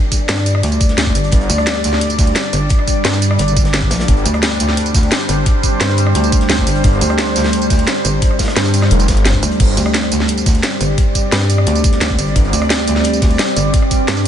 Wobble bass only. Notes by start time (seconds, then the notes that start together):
0.29 G2
0.63 D2
0.98 D2
1.15 G1
1.50 D2
2.53 G1
3.05 G2
3.39 G1
3.91 A#1
4.25 D2
5.29 G1
5.81 G2
6.15 D2
6.50 D2
6.67 G1
7.01 D2
8.05 G1
8.56 G2
9.43 D2
9.77 D2
10.81 G1
11.32 G2
11.67 D2
12.01 D2
12.19 G1
12.53 D2
13.57 G1
14.08 G2